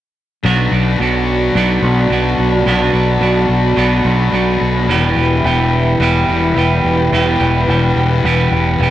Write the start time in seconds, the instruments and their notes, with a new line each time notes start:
0.44 fingered electric bass B1, overdriven electric guitar B2 F#3 B3 D4 F#4, analog synth pad F#4 D5 A5 B5
0.72 fingered electric bass B1, overdriven electric guitar B3 D4 F#4
0.99 fingered electric bass B1, distorted electric guitar B2, overdriven electric guitar F#3 B3 D4 F#4
1.55 fingered electric bass B1, overdriven electric guitar B2 F#3 B3 D4 F#4
1.82 fingered electric bass B1, distorted electric guitar F#3 B3
2.10 fingered electric bass B1, distorted electric guitar B2, overdriven electric guitar F#3 B3 D4 F#4
2.39 fingered electric bass B1
2.66 fingered electric bass B1, overdriven electric guitar B2 F#3 B3 D4 F#4
2.93 fingered electric bass B1, overdriven electric guitar B3 D4 F#4
3.21 fingered electric bass B1, distorted electric guitar B2, overdriven electric guitar F#3 B3 D4 F#4
3.49 fingered electric bass B1
3.76 fingered electric bass B1, overdriven electric guitar B2 F#3 B3 D4 F#4
4.05 fingered electric bass B1, distorted electric guitar F#3 B3
4.32 fingered electric bass B1, distorted electric guitar B2, overdriven electric guitar F#3 B3 D4 F#4
4.61 fingered electric bass B1
4.87 fingered electric bass E1, overdriven electric guitar E2 B2 E3 G3 B3, analog synth pad E4 B4 G5
4.91 overdriven electric guitar G4
5.16 fingered electric bass E1, overdriven electric guitar E3 G3 B3 G4
5.44 fingered electric bass E1, distorted electric guitar E2 B2, overdriven electric guitar E3 G3 B3 G4
6.00 fingered electric bass E1, overdriven electric guitar E2 B2 E3 G3 B3 G4
6.28 fingered electric bass E1, distorted electric guitar B2 E3
6.56 fingered electric bass E1, distorted electric guitar E2 B2, overdriven electric guitar E3 G3 B3 G4
6.84 fingered electric bass E1
7.12 fingered electric bass E1, overdriven electric guitar E2 B2 E3 G3 B3 G4
7.40 fingered electric bass E1, overdriven electric guitar E3 G3 B3 G4
7.68 fingered electric bass E1, distorted electric guitar E2 B2, overdriven electric guitar E3 G3 B3 G4
7.96 fingered electric bass E1
8.24 fingered electric bass E1, overdriven electric guitar E2 B2 E3 G3 B3 G4
8.51 fingered electric bass E1, distorted electric guitar B2 E3
8.79 fingered electric bass E1, distorted electric guitar E2 B2, overdriven electric guitar E3 G3 B3 G4